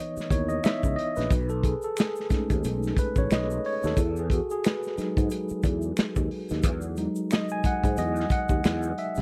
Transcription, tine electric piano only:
Already playing: E3 B3 D#4 C#5 D#5
0.31 B3 D#4 E4 C#5
0.49 D#5
0.64 E5
0.96 D#5
1.17 B4
1.50 A4
1.65 G#4
1.84 A4
1.99 G#4
2.29 G#3 A3 C#4 D#4
2.99 B4
3.18 C#5
3.33 D#5
3.66 C#5
3.86 A4
4.20 G#4
4.33 F#4
4.51 G#4
4.66 B4
4.98 F#3 G#3 D#4
6.97 F#3 G#3 D#4
7.32 D#5
7.52 G#5
7.66 F#5
7.99 D#5
8.32 F#5
8.99 E5

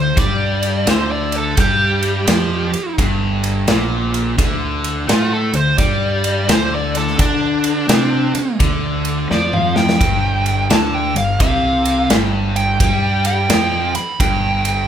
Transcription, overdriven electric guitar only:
Already playing: D3
0.16 G3
0.86 D3
1.56 G3
2.27 F3
2.72 muted overdriven electric guitar stroke
2.98 G2
3.68 A#2
4.38 D3
5.07 A3
5.53 D3
5.78 G3
6.48 D3
7.17 D4
7.88 C4
8.34 muted overdriven electric guitar stroke
8.59 D3
9.31 F3
9.99 G2
10.69 D3
11.14 G2
11.39 C3
12.10 G2
12.80 G3
13.50 F3
13.94 muted overdriven electric guitar stroke
14.20 G2

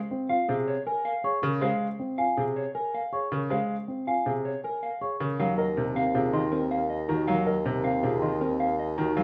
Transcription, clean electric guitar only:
0.29 F5
0.48 G#4
0.68 C#5
0.87 A#4
1.05 F5
1.24 C#5
1.43 A#4
1.62 F5
2.18 F5
2.37 G#4
2.56 C#5
2.75 A#4
2.94 F5
3.13 C#5
3.32 A#4
3.51 F5
4.08 F5
4.26 G#4
4.45 C#5
4.64 A#4
4.83 F5
5.02 C#5
5.20 A#4
5.39 F5
5.58 D#5
5.77 A#4
5.96 F5
6.15 G#4
6.33 D#5
6.52 A#4
6.71 F5
6.90 D#5
7.09 A#4
7.28 F5
7.47 D#5
7.65 A#4
7.84 F5
8.03 G#4
8.22 D#5
8.41 A#4
8.60 F5
8.79 D#5
8.98 A#4
9.17 F5

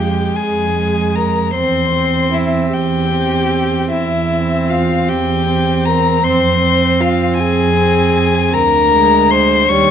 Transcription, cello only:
Already playing: F2
0.36 F2
1.56 E2
2.73 E2
3.92 E2
5.09 E2
6.24 F2
7.39 F2
8.54 D2
9.70 D#2

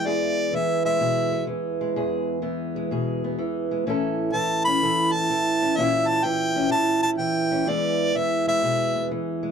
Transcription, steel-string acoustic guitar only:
Already playing: E3 G#3 B3
0.06 E2 G#4
0.53 E3 B3
0.85 G#3
1.00 B2 G#4
1.32 B3
1.47 E3
1.81 G#3
1.96 E2 G#4
2.42 E3 B3
2.76 G#3
2.91 B2 G#4
3.24 B3
3.39 E3
3.71 G#3
3.86 A2 E3 C#4 E4 A4
4.33 E3 E4
4.67 C#4
4.82 E3 A4
5.14 E4
5.30 E3
5.62 C#4
5.77 A#2 E3 C#4 E4 G4
6.24 E3 E4
6.56 C#4
6.70 E3 G4
7.03 E4
7.19 E3
7.52 C#4
7.66 E2 E3 G#3 B3 G#4
8.16 E3 B3
8.47 G#3
8.63 B2 G#4
8.96 B3
9.11 E3
9.43 G#3

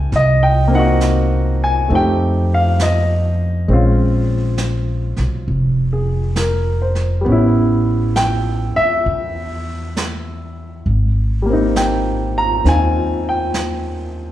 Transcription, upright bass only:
0.12 C2
1.90 F2
3.68 A#1
5.18 B1
5.48 F1
7.26 A1
8.77 muted upright bass stroke
9.06 E2
10.86 G#1
12.65 D#2

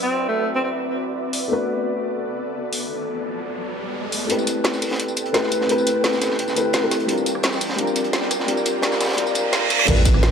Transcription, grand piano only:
Already playing: F#3 C4 D4 E4 B4
1.48 A3 B3 D4 F#4
1.53 B4
4.27 A3 C4 E4 G4
4.32 B4
5.33 A3 C4 E4 G4 B4
5.67 A3 C4 E4 G4
5.71 B4
6.55 A3 C4 E4 G4 B4
6.81 A3 C4 E4 G4 B4
7.06 G3 C4 D4 F4
7.11 A#4
7.76 G3 C4 D4 F4
7.81 A#4
8.46 G3 C4 D4 F4
8.51 A#4
8.81 G3 C4 D4 F4
8.85 A#4
9.15 G3 C4 D4 F4
9.20 A#4
9.33 G3 C4 D4 F4
9.38 A#4
9.50 G3 C4 D4 F4
9.55 A#4
9.68 G3 C4 D4 F4
9.73 A#4
9.85 A3 C4 E4 G4
9.90 B4

